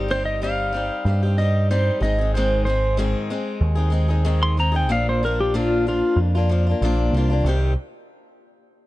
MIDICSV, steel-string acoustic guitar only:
0, 0, Header, 1, 2, 480
1, 0, Start_track
1, 0, Key_signature, -3, "minor"
1, 0, Tempo, 640342
1, 1750, Time_signature, 4, 2, 24, 8
1, 6648, End_track
2, 0, Start_track
2, 0, Title_t, "Steel-string acoustic guitar"
2, 0, Program_c, 0, 25
2, 0, Note_on_c, 0, 67, 90
2, 63, Note_on_c, 0, 55, 61
2, 78, Note_on_c, 0, 60, 67
2, 80, Note_off_c, 0, 67, 0
2, 83, Note_on_c, 0, 63, 60
2, 91, Note_on_c, 0, 67, 69
2, 303, Note_off_c, 0, 55, 0
2, 311, Note_off_c, 0, 60, 0
2, 312, Note_on_c, 0, 55, 73
2, 316, Note_off_c, 0, 63, 0
2, 320, Note_off_c, 0, 67, 0
2, 320, Note_on_c, 0, 60, 74
2, 329, Note_on_c, 0, 63, 81
2, 330, Note_on_c, 0, 67, 86
2, 534, Note_off_c, 0, 55, 0
2, 543, Note_on_c, 0, 55, 59
2, 547, Note_off_c, 0, 60, 0
2, 556, Note_on_c, 0, 60, 59
2, 559, Note_off_c, 0, 63, 0
2, 560, Note_off_c, 0, 67, 0
2, 568, Note_on_c, 0, 63, 59
2, 574, Note_on_c, 0, 67, 64
2, 786, Note_off_c, 0, 55, 0
2, 793, Note_off_c, 0, 60, 0
2, 796, Note_on_c, 0, 55, 55
2, 798, Note_off_c, 0, 63, 0
2, 801, Note_off_c, 0, 67, 0
2, 803, Note_on_c, 0, 60, 53
2, 811, Note_on_c, 0, 63, 56
2, 820, Note_on_c, 0, 67, 60
2, 910, Note_off_c, 0, 67, 0
2, 912, Note_off_c, 0, 55, 0
2, 916, Note_off_c, 0, 60, 0
2, 919, Note_on_c, 0, 67, 51
2, 920, Note_off_c, 0, 63, 0
2, 932, Note_on_c, 0, 63, 45
2, 944, Note_on_c, 0, 60, 44
2, 1033, Note_off_c, 0, 60, 0
2, 1034, Note_off_c, 0, 67, 0
2, 1035, Note_on_c, 0, 55, 64
2, 1040, Note_off_c, 0, 63, 0
2, 1042, Note_on_c, 0, 60, 61
2, 1048, Note_on_c, 0, 63, 62
2, 1060, Note_on_c, 0, 67, 64
2, 1270, Note_off_c, 0, 55, 0
2, 1273, Note_off_c, 0, 60, 0
2, 1277, Note_off_c, 0, 63, 0
2, 1279, Note_on_c, 0, 55, 73
2, 1282, Note_on_c, 0, 60, 78
2, 1285, Note_off_c, 0, 67, 0
2, 1286, Note_on_c, 0, 63, 83
2, 1293, Note_on_c, 0, 67, 79
2, 1500, Note_off_c, 0, 55, 0
2, 1503, Note_on_c, 0, 56, 54
2, 1510, Note_off_c, 0, 60, 0
2, 1518, Note_off_c, 0, 63, 0
2, 1519, Note_on_c, 0, 60, 57
2, 1521, Note_off_c, 0, 67, 0
2, 1526, Note_on_c, 0, 63, 61
2, 1533, Note_on_c, 0, 68, 67
2, 1626, Note_off_c, 0, 56, 0
2, 1627, Note_off_c, 0, 68, 0
2, 1632, Note_off_c, 0, 63, 0
2, 1634, Note_off_c, 0, 60, 0
2, 1636, Note_on_c, 0, 68, 52
2, 1641, Note_on_c, 0, 63, 47
2, 1658, Note_on_c, 0, 60, 50
2, 1665, Note_on_c, 0, 56, 43
2, 1753, Note_off_c, 0, 68, 0
2, 1756, Note_off_c, 0, 63, 0
2, 1761, Note_on_c, 0, 44, 77
2, 1764, Note_off_c, 0, 60, 0
2, 1767, Note_off_c, 0, 56, 0
2, 1771, Note_on_c, 0, 51, 80
2, 1774, Note_on_c, 0, 63, 75
2, 1775, Note_on_c, 0, 56, 78
2, 1778, Note_on_c, 0, 60, 84
2, 1780, Note_on_c, 0, 68, 78
2, 1988, Note_off_c, 0, 56, 0
2, 1992, Note_off_c, 0, 60, 0
2, 1996, Note_off_c, 0, 44, 0
2, 1997, Note_on_c, 0, 56, 58
2, 2000, Note_off_c, 0, 51, 0
2, 2001, Note_on_c, 0, 60, 62
2, 2002, Note_off_c, 0, 63, 0
2, 2005, Note_off_c, 0, 68, 0
2, 2014, Note_on_c, 0, 63, 72
2, 2021, Note_on_c, 0, 68, 70
2, 2227, Note_off_c, 0, 56, 0
2, 2227, Note_on_c, 0, 51, 74
2, 2229, Note_on_c, 0, 44, 75
2, 2231, Note_off_c, 0, 60, 0
2, 2232, Note_off_c, 0, 68, 0
2, 2236, Note_on_c, 0, 56, 84
2, 2239, Note_off_c, 0, 63, 0
2, 2240, Note_on_c, 0, 60, 84
2, 2241, Note_on_c, 0, 68, 93
2, 2248, Note_on_c, 0, 63, 87
2, 2467, Note_off_c, 0, 56, 0
2, 2469, Note_off_c, 0, 44, 0
2, 2469, Note_off_c, 0, 51, 0
2, 2471, Note_off_c, 0, 60, 0
2, 2475, Note_off_c, 0, 68, 0
2, 2476, Note_on_c, 0, 56, 66
2, 2479, Note_off_c, 0, 63, 0
2, 2480, Note_on_c, 0, 60, 64
2, 2486, Note_on_c, 0, 63, 69
2, 2495, Note_on_c, 0, 68, 66
2, 2805, Note_off_c, 0, 68, 0
2, 2814, Note_on_c, 0, 68, 62
2, 2816, Note_off_c, 0, 63, 0
2, 2818, Note_off_c, 0, 60, 0
2, 2825, Note_on_c, 0, 63, 52
2, 2827, Note_on_c, 0, 60, 51
2, 2828, Note_off_c, 0, 56, 0
2, 2837, Note_on_c, 0, 56, 49
2, 2915, Note_off_c, 0, 56, 0
2, 2924, Note_on_c, 0, 56, 65
2, 2928, Note_off_c, 0, 60, 0
2, 2930, Note_off_c, 0, 63, 0
2, 2937, Note_on_c, 0, 60, 68
2, 2939, Note_off_c, 0, 68, 0
2, 2939, Note_on_c, 0, 63, 72
2, 2948, Note_on_c, 0, 68, 77
2, 3052, Note_off_c, 0, 68, 0
2, 3057, Note_off_c, 0, 56, 0
2, 3061, Note_on_c, 0, 68, 53
2, 3063, Note_off_c, 0, 60, 0
2, 3065, Note_off_c, 0, 63, 0
2, 3072, Note_on_c, 0, 63, 54
2, 3078, Note_on_c, 0, 60, 46
2, 3079, Note_on_c, 0, 56, 43
2, 3175, Note_off_c, 0, 56, 0
2, 3182, Note_on_c, 0, 44, 75
2, 3183, Note_off_c, 0, 60, 0
2, 3184, Note_off_c, 0, 63, 0
2, 3184, Note_on_c, 0, 56, 82
2, 3185, Note_off_c, 0, 68, 0
2, 3185, Note_on_c, 0, 51, 82
2, 3192, Note_on_c, 0, 60, 82
2, 3193, Note_on_c, 0, 63, 81
2, 3205, Note_on_c, 0, 68, 81
2, 3418, Note_off_c, 0, 56, 0
2, 3426, Note_off_c, 0, 44, 0
2, 3427, Note_off_c, 0, 51, 0
2, 3427, Note_on_c, 0, 56, 57
2, 3430, Note_off_c, 0, 60, 0
2, 3431, Note_off_c, 0, 63, 0
2, 3437, Note_off_c, 0, 68, 0
2, 3439, Note_on_c, 0, 60, 61
2, 3447, Note_on_c, 0, 63, 59
2, 3452, Note_on_c, 0, 68, 70
2, 3527, Note_off_c, 0, 68, 0
2, 3536, Note_on_c, 0, 68, 58
2, 3541, Note_off_c, 0, 63, 0
2, 3548, Note_off_c, 0, 56, 0
2, 3550, Note_on_c, 0, 63, 50
2, 3551, Note_off_c, 0, 60, 0
2, 3560, Note_on_c, 0, 60, 51
2, 3567, Note_on_c, 0, 56, 46
2, 3663, Note_off_c, 0, 68, 0
2, 3664, Note_off_c, 0, 60, 0
2, 3664, Note_on_c, 0, 46, 72
2, 3666, Note_off_c, 0, 56, 0
2, 3667, Note_on_c, 0, 58, 79
2, 3669, Note_on_c, 0, 53, 80
2, 3670, Note_off_c, 0, 63, 0
2, 3676, Note_on_c, 0, 62, 81
2, 3677, Note_on_c, 0, 65, 81
2, 3907, Note_off_c, 0, 46, 0
2, 3908, Note_off_c, 0, 58, 0
2, 3909, Note_off_c, 0, 53, 0
2, 3913, Note_off_c, 0, 62, 0
2, 3913, Note_off_c, 0, 65, 0
2, 3919, Note_on_c, 0, 53, 60
2, 3927, Note_on_c, 0, 58, 60
2, 3940, Note_on_c, 0, 62, 62
2, 3944, Note_on_c, 0, 65, 70
2, 4144, Note_off_c, 0, 53, 0
2, 4151, Note_off_c, 0, 58, 0
2, 4151, Note_off_c, 0, 62, 0
2, 4153, Note_on_c, 0, 46, 74
2, 4153, Note_on_c, 0, 53, 78
2, 4154, Note_off_c, 0, 65, 0
2, 4160, Note_on_c, 0, 58, 79
2, 4160, Note_on_c, 0, 62, 88
2, 4163, Note_on_c, 0, 65, 90
2, 4389, Note_off_c, 0, 53, 0
2, 4391, Note_off_c, 0, 46, 0
2, 4394, Note_off_c, 0, 58, 0
2, 4394, Note_off_c, 0, 62, 0
2, 4396, Note_off_c, 0, 65, 0
2, 4398, Note_on_c, 0, 53, 56
2, 4406, Note_on_c, 0, 58, 64
2, 4411, Note_on_c, 0, 62, 60
2, 4414, Note_on_c, 0, 65, 61
2, 4750, Note_off_c, 0, 65, 0
2, 4753, Note_off_c, 0, 53, 0
2, 4757, Note_off_c, 0, 58, 0
2, 4759, Note_off_c, 0, 62, 0
2, 4759, Note_on_c, 0, 65, 64
2, 4774, Note_on_c, 0, 62, 59
2, 4780, Note_on_c, 0, 58, 52
2, 4868, Note_on_c, 0, 53, 68
2, 4874, Note_off_c, 0, 58, 0
2, 4874, Note_off_c, 0, 65, 0
2, 4875, Note_off_c, 0, 62, 0
2, 4883, Note_on_c, 0, 58, 66
2, 4884, Note_on_c, 0, 62, 72
2, 4887, Note_on_c, 0, 65, 72
2, 4988, Note_off_c, 0, 53, 0
2, 4988, Note_off_c, 0, 65, 0
2, 4996, Note_off_c, 0, 58, 0
2, 4996, Note_off_c, 0, 62, 0
2, 4997, Note_on_c, 0, 65, 56
2, 5017, Note_on_c, 0, 62, 49
2, 5032, Note_on_c, 0, 58, 46
2, 5113, Note_off_c, 0, 65, 0
2, 5114, Note_on_c, 0, 46, 84
2, 5115, Note_off_c, 0, 58, 0
2, 5119, Note_on_c, 0, 53, 78
2, 5123, Note_off_c, 0, 62, 0
2, 5124, Note_on_c, 0, 58, 85
2, 5132, Note_on_c, 0, 65, 92
2, 5133, Note_on_c, 0, 62, 95
2, 5346, Note_off_c, 0, 53, 0
2, 5351, Note_off_c, 0, 46, 0
2, 5355, Note_on_c, 0, 53, 66
2, 5356, Note_off_c, 0, 58, 0
2, 5360, Note_off_c, 0, 62, 0
2, 5360, Note_off_c, 0, 65, 0
2, 5373, Note_on_c, 0, 58, 74
2, 5379, Note_on_c, 0, 62, 76
2, 5380, Note_on_c, 0, 65, 71
2, 5460, Note_off_c, 0, 65, 0
2, 5469, Note_on_c, 0, 65, 61
2, 5471, Note_off_c, 0, 53, 0
2, 5473, Note_off_c, 0, 62, 0
2, 5480, Note_off_c, 0, 58, 0
2, 5482, Note_on_c, 0, 62, 57
2, 5494, Note_on_c, 0, 58, 49
2, 5588, Note_off_c, 0, 65, 0
2, 5592, Note_on_c, 0, 48, 71
2, 5595, Note_off_c, 0, 62, 0
2, 5595, Note_on_c, 0, 51, 74
2, 5597, Note_off_c, 0, 58, 0
2, 5600, Note_on_c, 0, 60, 83
2, 5609, Note_on_c, 0, 63, 77
2, 5612, Note_on_c, 0, 67, 85
2, 5782, Note_off_c, 0, 48, 0
2, 5784, Note_off_c, 0, 51, 0
2, 5786, Note_off_c, 0, 60, 0
2, 5790, Note_off_c, 0, 63, 0
2, 5792, Note_off_c, 0, 67, 0
2, 6648, End_track
0, 0, End_of_file